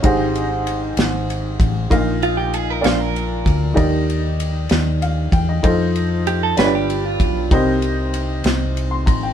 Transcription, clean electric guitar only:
\new Staff \with { instrumentName = "Clean electric guitar" } { \time 6/8 \key ees \major \tempo 4. = 64 r2. | r8 f'16 g'16 aes'16 bes'16 c''16 bes'4~ bes'16 | r2. | r4 g'16 a'16 b'16 g'8 f'8. |
r2. | }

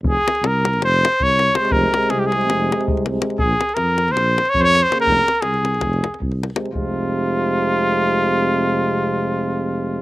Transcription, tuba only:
\new Staff \with { instrumentName = "Tuba" } { \clef bass \time 9/8 \key f \minor \tempo 4. = 108 f,,8 r8 c,4 f,,4 c,4. | f,,8 r8 c,4 f,,4 c,4. | bes,,8 r8 f,4 bes,,4 f,4. | f,,8 r8 c,4 f,,4 c,4. |
f,,1~ f,,8~ | f,,1~ f,,8 | }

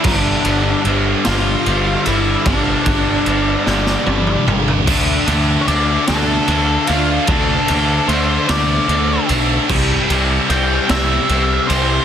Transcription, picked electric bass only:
\new Staff \with { instrumentName = "Picked electric bass" } { \clef bass \time 6/8 \key g \dorian \tempo 4. = 50 g,,8 g,,8 g,,8 g,,8 g,,8 g,,8 | g,,8 g,,8 g,,8 g,,8 g,,8 g,,8 | d,8 d,8 d,8 d,8 d,8 d,8 | d,8 d,8 d,8 d,8 d,8 b,,8 |
c,8 c,8 c,8 c,8 c,8 c,8 | }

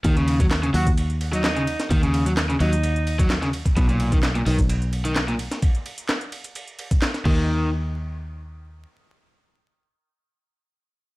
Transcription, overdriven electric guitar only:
\new Staff \with { instrumentName = "Overdriven electric guitar" } { \clef bass \time 4/4 \key ees \minor \tempo 4 = 129 ees16 des8 ges16 r16 des16 ges16 r4 ges16 r16 des16 r8 | ees16 des8 ges16 r16 des16 ges16 r4 ges16 r16 des16 r8 | b,16 ais,8 dis16 r16 ais,16 dis16 r4 dis16 r16 ais,16 r8 | r2. r8 ees8~ |
ees8 r2. r8 | r1 | }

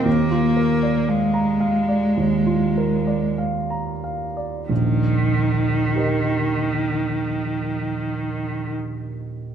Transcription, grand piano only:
\new Staff \with { instrumentName = "Grand piano" } { \time 4/4 \key ees \major \tempo 4 = 49 << { ees,16 f'16 bes'16 d''16 f''16 bes''16 f''16 d''16 ees,16 f'16 bes'16 d''16 f''16 bes''16 f''16 d''16 | <ees,, bes,,>1 | } \\ { r1 | r4 <g' bes' ees''>2. | } >> }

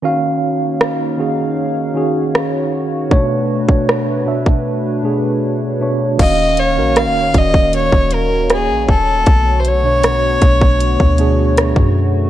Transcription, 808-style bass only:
\new Staff \with { instrumentName = "808-style bass" } { \clef bass \time 4/4 \key ees \minor \tempo 4 = 78 r1 | r1 | ees,,8. bes,,16. ees,,16. ees,,8. ees,,4 bes,,16 ees,,8 | b,,4. b,,8. d,4 fis,8. | }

